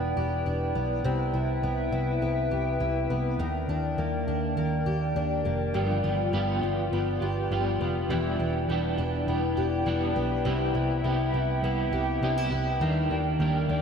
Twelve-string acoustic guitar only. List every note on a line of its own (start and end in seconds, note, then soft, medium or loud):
0.00 1.04 E3 medium
0.00 0.75 B3 medium
0.00 0.45 D4 soft
0.00 0.16 G4 medium
0.17 2.51 G4 medium
0.46 1.10 D4 medium
0.75 1.63 B3 medium
1.04 3.39 C3 medium
1.34 1.91 E4 soft
1.63 2.21 B3 medium
1.92 2.79 E4 medium
2.22 3.09 B3 medium
2.51 4.86 G4 medium
2.80 3.45 E4 medium
3.10 3.46 B3 medium
3.39 5.75 D#3 medium
3.69 4.27 D4 medium
3.98 4.56 A#3 soft
4.28 5.16 D4 medium
4.57 5.44 A#3 medium
4.86 6.07 G4 medium
5.16 6.03 D4 medium
5.45 5.81 A#3 soft
5.74 8.10 G2 medium
6.04 6.62 F4 medium
6.33 6.92 B3 medium
6.63 7.50 F4 soft
6.93 7.80 B3 medium
7.22 9.57 G4 medium
7.51 8.16 F4 medium
7.81 8.69 B3 medium
8.10 10.45 E3 medium
8.40 8.97 D4 medium
8.70 9.28 B3 medium
8.98 9.85 D4 medium
9.28 10.15 B3 medium
9.57 11.92 G4 medium
9.86 10.51 D4 medium
10.16 11.04 B3 medium
10.45 12.81 C3 medium
10.75 11.33 E4 soft
11.04 11.62 B3 medium
11.34 12.22 E4 soft
11.64 12.51 B3 medium
11.93 13.82 G4 medium
12.23 12.38 D4 medium
12.38 12.87 E4 soft
12.52 12.87 B3 medium
12.81 13.82 D#3 medium
13.11 13.69 D4 soft
13.40 13.82 A#3 soft
13.69 13.82 D4 soft